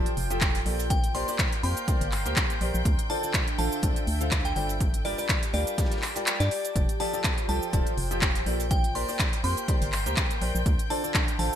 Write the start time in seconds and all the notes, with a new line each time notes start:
Already playing: F3 F4 G4 A4 C5 D5 G5 G6
0.06 closed hi-hat, shaker
0.17 F1, open hi-hat, shaker
0.30 F3 F4 G4 A4 G5, closed hi-hat, shaker
0.41 kick, snare, clap, closed hi-hat, shaker
0.55 closed hi-hat, shaker
0.66 A#1 A#3 F4 G4 A4 D5, open hi-hat, shaker
0.79 closed hi-hat, shaker
0.90 A#4 G5, kick, closed hi-hat, shaker
1.04 closed hi-hat, shaker
1.14 A#3 G4 A#4 C5 D5 C6, open hi-hat, shaker
1.21 F5
1.28 A#3 G4 A#4 C5 D5, open hi-hat, shaker
1.39 kick, snare, clap, closed hi-hat, shaker
1.52 closed hi-hat, shaker
1.59 C6
1.63 F2 A#3 G4 A#4 C5 G5 C6, open hi-hat, shaker
1.77 closed hi-hat, shaker
1.88 A#3 G4 A#4 C5 D5, kick, closed hi-hat, shaker
2.01 G1, closed hi-hat, shaker
2.12 clap, open hi-hat, shaker
2.26 D2 A#3 G4 A#4 C5 G5, closed hi-hat, shaker
2.36 kick, snare, clap, closed hi-hat, shaker
2.50 closed hi-hat, shaker
2.61 A#1 G4 A#4 C5 D5, open hi-hat, shaker
2.74 A#1, shaker
2.85 D2 D4, kick, closed hi-hat, shaker
2.99 closed hi-hat, shaker
3.10 D3 F4 A4 C5 D5 A5, open hi-hat, shaker
3.23 D3 F4 A4 C5 D5 E5, shaker
3.30 A4, kick, snare, clap, closed hi-hat, shaker
3.34 shaker
3.48 closed hi-hat, shaker
3.59 A1 D3 F4 A4 C5 F5 A5, open hi-hat, shaker
3.72 shaker
3.82 C2 D3 F4 A4 C5 D5, kick, closed hi-hat, shaker
3.96 closed hi-hat, shaker
4.07 D2, open hi-hat, shaker
4.21 D3 F4 A4 C5 F5, closed hi-hat, shaker
4.31 kick, snare, clap, closed hi-hat, shaker
4.45 G5, closed hi-hat, shaker
4.55 G1 G3 F4 A4 C5 D5 G5, open hi-hat, shaker
4.69 closed hi-hat, shaker
4.80 G4, kick, closed hi-hat, shaker
4.94 A5, closed hi-hat, shaker
5.03 G3 F4 G4 A#4 D5, open hi-hat, shaker
5.18 G3 F4 G4 A#4 D5, open hi-hat, shaker
5.29 kick, snare, clap, closed hi-hat, shaker
5.43 closed hi-hat, shaker
5.53 D2 G3 F4 G4 A#4 D5 F5, open hi-hat, shaker
5.67 closed hi-hat, shaker
5.78 G3 F4 G4 A#4 D5, kick, snare, closed hi-hat, shaker
5.85 snare, shaker
5.91 snare, closed hi-hat, shaker
5.96 snare, shaker
6.02 snare, clap, open hi-hat, shaker
6.16 G3 F4 G4 A#4 D5, closed hi-hat, shaker
6.26 clap, closed hi-hat, shaker
6.40 G2 D5, snare, closed hi-hat, shaker
6.51 closed hi-hat, open hi-hat
6.65 closed hi-hat, shaker
6.76 F1 F4 G5 G6, kick, closed hi-hat, shaker
6.89 C5, closed hi-hat, shaker
7.00 F3 F4 G4 A4 D5 A5, open hi-hat, shaker
7.13 F3 F4 G4 A4 D5, shaker
7.24 kick, snare, clap, closed hi-hat, shaker
7.38 closed hi-hat, shaker
7.49 C2 F3 F4 G4 A4 G5 A5, open hi-hat, shaker
7.62 G5, shaker
7.73 D1 F3 F4 G4 A4 D5, kick, closed hi-hat, shaker
7.87 closed hi-hat, shaker
7.98 F1, open hi-hat, shaker
8.11 F3 F4 G4 A4 G5, closed hi-hat, shaker
8.22 kick, snare, clap, closed hi-hat, shaker
8.35 closed hi-hat, shaker
8.46 A#1 A#3 F4 G4 A4 D5, open hi-hat, shaker
8.60 closed hi-hat, shaker
8.71 A#4 G5, kick, closed hi-hat, shaker
8.84 closed hi-hat, shaker
8.95 A#3 G4 A#4 C5 D5 C6, open hi-hat, shaker
9.07 A#3 G4 A#4 C5 D5 C6, open hi-hat, shaker
9.15 F5, snare, clap
9.20 kick, closed hi-hat, shaker
9.33 closed hi-hat, shaker
9.43 F2 A#3 G4 A#4 C5 G5 C6, open hi-hat, shaker
9.57 closed hi-hat, shaker
9.68 A#3 G4 A#4 C5 D5, kick, closed hi-hat, shaker
9.82 G1, closed hi-hat, shaker
9.92 clap, open hi-hat
10.06 D2 A#3 G4 A#4 C5 G5, closed hi-hat, shaker
10.17 kick, snare, clap, closed hi-hat, shaker
10.31 closed hi-hat, shaker
10.41 A#1 G4 A#4 C5 D5, open hi-hat, shaker
10.55 A#1, shaker
10.66 D2 D4, kick, closed hi-hat, shaker
10.79 closed hi-hat, shaker
10.90 D3 F4 A4 C5 D5 A5, open hi-hat, shaker
11.03 D3 F4 A4 C5 D5 E5, shaker
11.14 kick, snare, clap, closed hi-hat, shaker
11.28 closed hi-hat, shaker
11.39 A1 D3 F4 A4 C5 F5 A5, open hi-hat, shaker